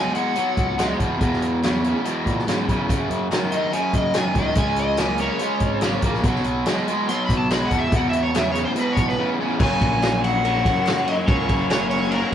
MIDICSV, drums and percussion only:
0, 0, Header, 1, 2, 480
1, 0, Start_track
1, 0, Key_signature, 6, "major"
1, 0, Tempo, 419874
1, 1379, Time_signature, 4, 2, 24, 8
1, 14113, End_track
2, 0, Start_track
2, 0, Title_t, "Drums"
2, 168, Note_on_c, 9, 42, 71
2, 282, Note_off_c, 9, 42, 0
2, 405, Note_on_c, 9, 42, 91
2, 520, Note_off_c, 9, 42, 0
2, 652, Note_on_c, 9, 42, 65
2, 655, Note_on_c, 9, 36, 85
2, 766, Note_off_c, 9, 42, 0
2, 769, Note_off_c, 9, 36, 0
2, 900, Note_on_c, 9, 42, 104
2, 911, Note_on_c, 9, 38, 108
2, 1014, Note_off_c, 9, 42, 0
2, 1025, Note_off_c, 9, 38, 0
2, 1141, Note_on_c, 9, 36, 80
2, 1144, Note_on_c, 9, 42, 68
2, 1256, Note_off_c, 9, 36, 0
2, 1258, Note_off_c, 9, 42, 0
2, 1379, Note_on_c, 9, 42, 87
2, 1381, Note_on_c, 9, 36, 99
2, 1494, Note_off_c, 9, 42, 0
2, 1495, Note_off_c, 9, 36, 0
2, 1516, Note_on_c, 9, 38, 31
2, 1623, Note_on_c, 9, 42, 66
2, 1630, Note_off_c, 9, 38, 0
2, 1738, Note_off_c, 9, 42, 0
2, 1866, Note_on_c, 9, 42, 92
2, 1877, Note_on_c, 9, 38, 106
2, 1980, Note_off_c, 9, 42, 0
2, 1991, Note_off_c, 9, 38, 0
2, 2106, Note_on_c, 9, 42, 63
2, 2221, Note_off_c, 9, 42, 0
2, 2347, Note_on_c, 9, 42, 87
2, 2461, Note_off_c, 9, 42, 0
2, 2586, Note_on_c, 9, 36, 76
2, 2592, Note_on_c, 9, 42, 59
2, 2700, Note_off_c, 9, 36, 0
2, 2706, Note_off_c, 9, 42, 0
2, 2727, Note_on_c, 9, 38, 34
2, 2833, Note_on_c, 9, 42, 92
2, 2842, Note_off_c, 9, 38, 0
2, 2844, Note_on_c, 9, 38, 105
2, 2947, Note_off_c, 9, 42, 0
2, 2959, Note_off_c, 9, 38, 0
2, 3067, Note_on_c, 9, 36, 82
2, 3074, Note_on_c, 9, 42, 62
2, 3182, Note_off_c, 9, 36, 0
2, 3188, Note_off_c, 9, 42, 0
2, 3308, Note_on_c, 9, 36, 101
2, 3314, Note_on_c, 9, 42, 93
2, 3422, Note_off_c, 9, 36, 0
2, 3429, Note_off_c, 9, 42, 0
2, 3550, Note_on_c, 9, 42, 63
2, 3664, Note_off_c, 9, 42, 0
2, 3792, Note_on_c, 9, 39, 100
2, 3793, Note_on_c, 9, 42, 95
2, 3804, Note_on_c, 9, 38, 113
2, 3906, Note_off_c, 9, 39, 0
2, 3907, Note_off_c, 9, 42, 0
2, 3919, Note_off_c, 9, 38, 0
2, 4020, Note_on_c, 9, 42, 68
2, 4134, Note_off_c, 9, 42, 0
2, 4265, Note_on_c, 9, 42, 96
2, 4380, Note_off_c, 9, 42, 0
2, 4497, Note_on_c, 9, 36, 85
2, 4497, Note_on_c, 9, 42, 67
2, 4612, Note_off_c, 9, 36, 0
2, 4612, Note_off_c, 9, 42, 0
2, 4728, Note_on_c, 9, 42, 96
2, 4740, Note_on_c, 9, 38, 122
2, 4740, Note_on_c, 9, 39, 91
2, 4843, Note_off_c, 9, 42, 0
2, 4854, Note_off_c, 9, 38, 0
2, 4855, Note_off_c, 9, 39, 0
2, 4973, Note_on_c, 9, 42, 77
2, 4975, Note_on_c, 9, 36, 87
2, 5087, Note_off_c, 9, 42, 0
2, 5089, Note_off_c, 9, 36, 0
2, 5204, Note_on_c, 9, 42, 97
2, 5214, Note_on_c, 9, 36, 109
2, 5319, Note_off_c, 9, 42, 0
2, 5328, Note_off_c, 9, 36, 0
2, 5443, Note_on_c, 9, 42, 74
2, 5557, Note_off_c, 9, 42, 0
2, 5684, Note_on_c, 9, 42, 97
2, 5695, Note_on_c, 9, 38, 114
2, 5696, Note_on_c, 9, 39, 102
2, 5798, Note_off_c, 9, 42, 0
2, 5809, Note_off_c, 9, 38, 0
2, 5810, Note_off_c, 9, 39, 0
2, 5919, Note_on_c, 9, 42, 66
2, 6033, Note_off_c, 9, 42, 0
2, 6163, Note_on_c, 9, 42, 90
2, 6277, Note_off_c, 9, 42, 0
2, 6402, Note_on_c, 9, 42, 68
2, 6409, Note_on_c, 9, 36, 86
2, 6516, Note_off_c, 9, 42, 0
2, 6523, Note_off_c, 9, 36, 0
2, 6641, Note_on_c, 9, 42, 90
2, 6652, Note_on_c, 9, 38, 115
2, 6654, Note_on_c, 9, 39, 101
2, 6755, Note_off_c, 9, 42, 0
2, 6766, Note_off_c, 9, 38, 0
2, 6769, Note_off_c, 9, 39, 0
2, 6883, Note_on_c, 9, 42, 66
2, 6888, Note_on_c, 9, 36, 90
2, 6997, Note_off_c, 9, 42, 0
2, 7002, Note_off_c, 9, 36, 0
2, 7019, Note_on_c, 9, 38, 30
2, 7130, Note_on_c, 9, 36, 111
2, 7130, Note_on_c, 9, 42, 83
2, 7133, Note_off_c, 9, 38, 0
2, 7244, Note_off_c, 9, 36, 0
2, 7244, Note_off_c, 9, 42, 0
2, 7263, Note_on_c, 9, 38, 35
2, 7365, Note_on_c, 9, 42, 65
2, 7377, Note_off_c, 9, 38, 0
2, 7479, Note_off_c, 9, 42, 0
2, 7609, Note_on_c, 9, 42, 93
2, 7617, Note_on_c, 9, 39, 102
2, 7621, Note_on_c, 9, 38, 115
2, 7723, Note_off_c, 9, 42, 0
2, 7732, Note_off_c, 9, 39, 0
2, 7735, Note_off_c, 9, 38, 0
2, 7861, Note_on_c, 9, 42, 66
2, 7976, Note_off_c, 9, 42, 0
2, 8100, Note_on_c, 9, 42, 94
2, 8215, Note_off_c, 9, 42, 0
2, 8334, Note_on_c, 9, 36, 81
2, 8342, Note_on_c, 9, 42, 68
2, 8449, Note_off_c, 9, 36, 0
2, 8456, Note_off_c, 9, 42, 0
2, 8579, Note_on_c, 9, 42, 93
2, 8586, Note_on_c, 9, 39, 99
2, 8590, Note_on_c, 9, 38, 112
2, 8693, Note_off_c, 9, 42, 0
2, 8700, Note_off_c, 9, 39, 0
2, 8704, Note_off_c, 9, 38, 0
2, 8811, Note_on_c, 9, 42, 72
2, 8814, Note_on_c, 9, 36, 79
2, 8926, Note_off_c, 9, 42, 0
2, 8928, Note_off_c, 9, 36, 0
2, 9055, Note_on_c, 9, 36, 109
2, 9055, Note_on_c, 9, 42, 93
2, 9169, Note_off_c, 9, 42, 0
2, 9170, Note_off_c, 9, 36, 0
2, 9295, Note_on_c, 9, 42, 70
2, 9409, Note_off_c, 9, 42, 0
2, 9541, Note_on_c, 9, 42, 100
2, 9546, Note_on_c, 9, 39, 102
2, 9552, Note_on_c, 9, 38, 115
2, 9655, Note_off_c, 9, 42, 0
2, 9660, Note_off_c, 9, 39, 0
2, 9666, Note_off_c, 9, 38, 0
2, 9775, Note_on_c, 9, 42, 68
2, 9890, Note_off_c, 9, 42, 0
2, 10011, Note_on_c, 9, 42, 88
2, 10126, Note_off_c, 9, 42, 0
2, 10251, Note_on_c, 9, 36, 83
2, 10253, Note_on_c, 9, 42, 65
2, 10366, Note_off_c, 9, 36, 0
2, 10368, Note_off_c, 9, 42, 0
2, 10390, Note_on_c, 9, 38, 32
2, 10504, Note_off_c, 9, 38, 0
2, 10972, Note_on_c, 9, 49, 127
2, 10974, Note_on_c, 9, 36, 114
2, 11086, Note_off_c, 9, 49, 0
2, 11088, Note_off_c, 9, 36, 0
2, 11216, Note_on_c, 9, 36, 91
2, 11219, Note_on_c, 9, 51, 74
2, 11330, Note_off_c, 9, 36, 0
2, 11333, Note_off_c, 9, 51, 0
2, 11459, Note_on_c, 9, 51, 101
2, 11463, Note_on_c, 9, 39, 94
2, 11470, Note_on_c, 9, 38, 118
2, 11573, Note_off_c, 9, 51, 0
2, 11577, Note_off_c, 9, 39, 0
2, 11585, Note_off_c, 9, 38, 0
2, 11707, Note_on_c, 9, 51, 81
2, 11821, Note_off_c, 9, 51, 0
2, 11943, Note_on_c, 9, 51, 105
2, 12057, Note_off_c, 9, 51, 0
2, 12179, Note_on_c, 9, 36, 85
2, 12184, Note_on_c, 9, 51, 83
2, 12293, Note_off_c, 9, 36, 0
2, 12298, Note_off_c, 9, 51, 0
2, 12416, Note_on_c, 9, 39, 96
2, 12427, Note_on_c, 9, 51, 116
2, 12438, Note_on_c, 9, 38, 120
2, 12530, Note_off_c, 9, 39, 0
2, 12541, Note_off_c, 9, 51, 0
2, 12553, Note_off_c, 9, 38, 0
2, 12661, Note_on_c, 9, 51, 83
2, 12775, Note_off_c, 9, 51, 0
2, 12894, Note_on_c, 9, 36, 119
2, 12898, Note_on_c, 9, 51, 106
2, 13008, Note_off_c, 9, 36, 0
2, 13012, Note_off_c, 9, 51, 0
2, 13135, Note_on_c, 9, 36, 89
2, 13138, Note_on_c, 9, 51, 79
2, 13249, Note_off_c, 9, 36, 0
2, 13252, Note_off_c, 9, 51, 0
2, 13376, Note_on_c, 9, 51, 112
2, 13383, Note_on_c, 9, 39, 104
2, 13388, Note_on_c, 9, 38, 125
2, 13491, Note_off_c, 9, 51, 0
2, 13497, Note_off_c, 9, 39, 0
2, 13502, Note_off_c, 9, 38, 0
2, 13613, Note_on_c, 9, 51, 84
2, 13728, Note_off_c, 9, 51, 0
2, 13750, Note_on_c, 9, 38, 31
2, 13849, Note_on_c, 9, 51, 108
2, 13865, Note_off_c, 9, 38, 0
2, 13964, Note_off_c, 9, 51, 0
2, 14113, End_track
0, 0, End_of_file